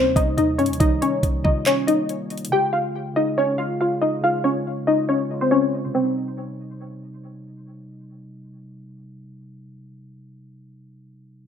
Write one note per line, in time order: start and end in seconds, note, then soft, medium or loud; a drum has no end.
0.00 0.14 C3 loud
0.00 0.16 G3 medium
0.00 0.13 A#3 medium
0.00 0.13 C4 medium
0.00 0.19 D#4 loud
0.00 0.12 C5 medium
0.05 0.16 D#2 loud
0.14 0.37 C2 loud
0.14 0.74 C3 medium
0.14 0.75 G3 medium
0.14 0.34 D#4 medium
0.14 0.33 D#5 medium
0.14 kick loud
0.14 closed hi-hat medium
0.19 0.76 D#4 medium
0.37 0.60 D#2 loud
0.37 0.55 D#4 medium
0.37 0.55 D#5 medium
0.37 closed hi-hat medium
0.58 0.71 G2 loud
0.58 0.77 C#4 medium
0.58 0.76 C#5 medium
0.58 closed hi-hat medium
0.66 0.80 D#2 loud
0.66 closed hi-hat medium
0.73 closed hi-hat medium
0.78 1.01 C2 loud
0.78 1.38 D#3 loud
0.78 1.39 G3 medium
0.78 0.98 D#4 medium
0.78 0.98 D#5 medium
0.78 kick loud
0.78 closed hi-hat medium
0.82 1.40 D#4 loud
1.02 1.43 C#4 medium
1.02 1.42 C#5 medium
1.02 closed hi-hat medium
1.23 1.44 C2 loud
1.23 kick medium
1.23 closed hi-hat medium
1.43 1.83 C3 medium
1.43 2.48 C3 loud
1.43 1.84 G3 medium
1.43 1.62 D#4 medium
1.43 1.62 D#5 medium
1.43 kick medium
1.47 1.85 F4 medium
1.66 1.84 C#4 medium
1.66 1.84 C#5 loud
1.66 clap loud
1.66 closed hi-hat medium
1.86 2.45 C3 medium
1.86 2.47 G3 medium
1.86 2.48 D#4 medium
1.86 2.48 D#5 medium
1.86 closed hi-hat medium
1.90 2.48 A#3 medium
2.09 closed hi-hat medium
2.30 closed hi-hat medium
2.38 closed hi-hat medium
2.45 closed hi-hat medium
2.50 3.10 C#3 medium
2.50 3.11 G#3 medium
2.50 2.70 G4 medium
2.50 2.69 G5 loud
2.55 3.12 F4 loud
2.73 3.14 F4 medium
2.73 3.13 F5 medium
3.13 3.54 C#3 medium
3.13 3.55 G#3 medium
3.13 3.34 D#4 medium
3.13 3.34 D#5 medium
3.18 3.56 G#4 medium
3.38 3.56 C#4 medium
3.38 3.55 C#5 medium
3.57 4.17 C#3 medium
3.57 4.18 G#3 medium
3.57 3.76 F4 medium
3.57 3.76 F5 medium
3.62 4.19 F4 medium
3.81 3.98 F4 medium
3.81 3.98 F5 medium
4.02 4.20 D#4 medium
4.02 4.19 D#5 medium
4.21 4.81 C#3 medium
4.21 4.82 G#3 medium
4.21 4.41 F4 medium
4.21 4.41 F5 medium
4.26 4.83 F4 loud
4.44 4.85 C#4 medium
4.44 4.85 C#5 medium
4.85 5.25 C#3 medium
4.85 5.26 G#3 medium
4.85 5.05 D#4 medium
4.85 5.05 D#5 medium
4.89 5.28 F4 medium
5.09 5.39 C#4 medium
5.09 5.39 C#5 medium
5.29 5.89 C#3 medium
5.29 5.90 G#3 medium
5.34 5.91 F4 medium
5.41 5.50 C4 medium
5.41 5.50 C5 medium
5.51 5.92 C#4 medium
5.51 5.92 C#5 medium
5.85 9.57 C3 medium
5.95 9.66 G3 medium
5.95 7.19 C4 medium
6.04 9.75 D#4 medium